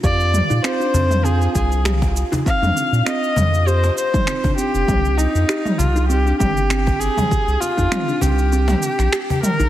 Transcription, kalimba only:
X:1
M:4/4
L:1/16
Q:"Swing 16ths" 1/4=99
K:Cm
V:1 name="Kalimba"
G z2 E C D C z C4 G z2 E | C D C z C4 G z2 E C D C z | C4 G z2 E C D C z C4 | G z2 E C D C z C4 G z2 E |]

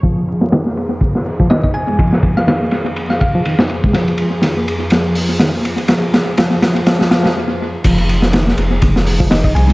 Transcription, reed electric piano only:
X:1
M:4/4
L:1/16
Q:"Swing 16ths" 1/4=123
K:Fm
V:1 name="Reed electric piano" clef=bass
F,4 E, B, z4 z F, E, E z A, | F,4 E, B, z4 z F, E, E z A, | F,4 E, B, z2 F,4 E, B, z2 | F,4 F,4 F,2 F,2 z4 |
F,4 E, B, z4 z F, E, E z A, |]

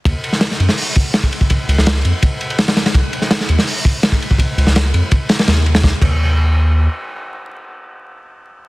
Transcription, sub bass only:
X:1
M:4/4
L:1/16
Q:1/4=166
K:Ebdor
V:1 name="Sub bass" clef=bass
E,, z4 z G,, z8 z | z2 D,, D,,3 F,, z8 z | C,, z4 z E,, z8 z | z2 D,, D,,3 F,, z4 z E,,4 |
E,, z E,,8- E,,2 z4 | z16 |]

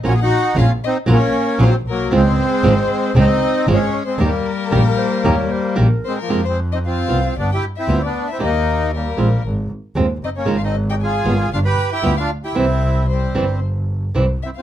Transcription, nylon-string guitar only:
X:1
M:4/4
L:1/8
Q:1/4=115
K:Ebmix
V:1 name="Nylon-string guitar"
[_G,B,DF] z [G,B,DF] z [G,B,DF] z [G,B,DF] z | [D,F,A,CF] z [D,F,A,CF] z [D,F,A,CF] z [D,F,A,CF] z | [E,G,B,EG] z [E,G,B,EG] z [E,G,B,EG] z [E,G,B,EG] z | [K:Fm] [C,E,A,CF] z2 [G,=B,F] z2 [G,B,F] z |
[E,G,B,EG] z2 [A,CF] z2 [A,CF] z | [D,E,A,EF] z2 [G,=B,F] z2 [G,B,F] z | [C,=E,G,C=E] z2 [C,E,G,CE] z2 [C,E,G,CE] z |]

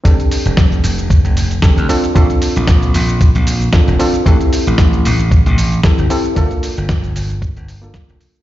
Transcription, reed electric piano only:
X:1
M:4/4
L:1/16
Q:"Swing 16ths" 1/4=114
K:F
V:1 name="Reed electric piano"
[CDGA]12 [CDGA]2 [CDFA]2 | [CDFA]12 [CDFA]2 [CDFA]2 | [CEGA]12 [CEGA]2 [CEGA]2 | [B,DFA]8- [B,DFA]3 [B,DFA]4- [B,DFA] |]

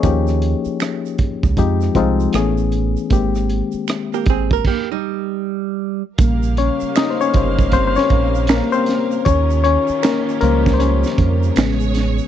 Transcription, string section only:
X:1
M:4/4
L:1/8
Q:"Swing 16ths" 1/4=78
K:Bbdor
V:1 name="String section"
z8 | z8 | [B,GBf]8 | [E,DFG]6 [^G,^G^c]2 |]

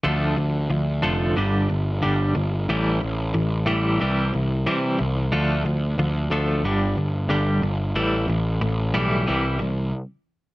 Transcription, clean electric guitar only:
X:1
M:4/4
L:1/8
Q:1/4=91
K:Dm
V:1 name="Clean electric guitar" clef=bass
[D,F,A,] [D,F,] [D,F,] [D,F,A,] [G,,D,G,] [G,,D,] [G,,D,G,] [G,,D,] | [A,,E,G,] [A,,E,] [A,,E,] [A,,E,G,] [C,E,G,] [C,E,] [C,E,G,] [C,E,] | [D,F,A,] [D,F,] [D,F,] [D,F,A,] [G,,D,G,] [G,,D,] [G,,D,G,] [G,,D,] | [A,,E,G,] [A,,E,] [A,,E,] [A,,E,G,] [C,E,G,] [C,E,] z2 |]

